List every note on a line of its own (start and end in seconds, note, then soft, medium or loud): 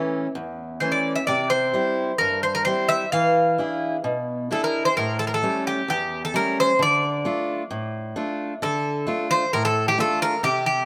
0.00 0.26 E3 soft
0.00 0.26 A3 soft
0.00 0.26 C#4 medium
0.00 0.31 E5 medium
0.35 0.80 E2 medium
0.80 1.19 E3 soft
0.80 1.19 A3 soft
0.80 1.19 C#4 medium
0.80 0.93 C5 medium
0.92 1.14 D5 medium
1.16 1.26 E5 medium
1.27 1.73 C3 medium
1.27 1.49 D5 medium
1.50 2.16 C5 medium
1.74 2.11 G3 soft
1.74 2.11 C4 soft
1.74 2.11 E4 medium
2.18 2.65 G2 medium
2.18 2.41 A#4 medium
2.43 2.54 C5 medium
2.55 2.64 A#4 medium
2.65 3.04 G3 soft
2.65 3.04 C4 soft
2.65 3.04 E4 soft
2.65 2.87 C5 medium
2.89 3.11 E5 loud
3.12 3.58 E3 medium
3.12 4.01 F5 medium
3.58 3.96 D4 soft
3.58 3.96 E4 soft
3.58 3.96 G#4 soft
4.04 4.49 B2 medium
4.51 4.88 D4 soft
4.51 4.88 E4 soft
4.51 4.88 G#4 medium
4.51 4.62 A4 medium
4.64 4.85 A#4 medium
4.85 4.96 C5 medium
4.97 5.42 A2 medium
4.97 5.18 A#4 medium
5.19 5.26 A4 medium
5.27 5.34 A#4 medium
5.34 5.64 A4 medium
5.43 5.79 G3 soft
5.43 5.80 A3 soft
5.43 5.80 C#4 medium
5.67 5.88 G4 medium
5.88 6.33 E2 medium
5.88 6.21 G4 medium
6.25 6.35 A4 medium
6.34 6.71 G3 medium
6.34 6.71 A3 soft
6.34 6.71 C#4 medium
6.34 6.59 A#4 loud
6.60 6.80 C5 loud
6.79 7.24 D3 medium
6.79 8.14 D5 medium
7.25 7.62 A3 soft
7.25 7.62 D4 soft
7.25 7.62 F4 medium
7.71 8.15 A2 medium
8.16 8.53 A3 medium
8.16 8.53 D4 soft
8.16 8.53 F4 soft
8.62 9.06 D3 medium
8.62 9.26 A4 medium
9.07 9.43 A3 soft
9.07 9.44 D4 soft
9.07 9.44 F4 medium
9.31 9.53 C5 loud
9.53 9.97 A2 medium
9.53 9.65 A#4 loud
9.65 9.85 A4 loud
9.88 9.98 G4 medium
9.98 10.34 A3 medium
9.98 10.34 D4 soft
9.98 10.34 F4 medium
9.98 10.20 A4 medium
10.22 10.43 A#4 loud
10.43 10.85 C3 medium
10.43 10.64 G4 medium
10.66 10.85 G4 medium